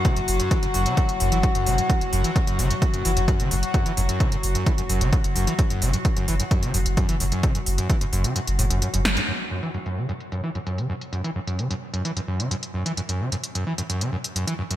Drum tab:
HH |xxoxxxoxxxoxxxox|xxoxxxoxxxoxxxox|xxoxxxoxxxoxxxox|xxoxxxoxxxoxxxox|
SD |----------------|----------------|----------------|----------------|
BD |o---o---o---o---|o---o---o---o---|o---o---o---o---|o---o---o---o---|

HH |xxoxxxoxxxoxxxox|xx-xxx-xxx-xxx-x|xx-xxx-xxx-xxx-x|xx-xxx-xxx-xxx-x|
SD |--------------o-|----------------|----------------|----------------|
BD |o---o-----------|----------------|----------------|----------------|